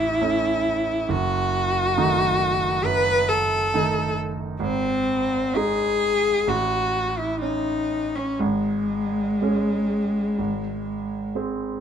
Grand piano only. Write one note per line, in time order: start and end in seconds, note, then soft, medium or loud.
0.00 0.19 A1 medium
0.21 1.06 A3 soft
0.21 1.06 C#4 soft
1.09 1.94 F#1 medium
1.97 2.82 D#3 soft
1.97 2.82 A3 soft
1.97 2.82 D#4 soft
2.84 4.25 F#2 soft
3.74 4.57 D#3 soft
3.74 4.57 A3 soft
3.74 4.57 D#4 soft
4.60 5.54 G#1 medium
5.56 6.43 G#3 soft
5.56 6.43 D#4 soft
6.47 7.38 A1 medium
7.42 8.37 C#4 soft
8.40 9.39 G#1 soft
9.42 10.34 G#3 soft
9.42 10.35 C#4 soft
10.38 11.32 G#1 soft
11.35 11.80 G#3 soft
11.35 11.80 C4 soft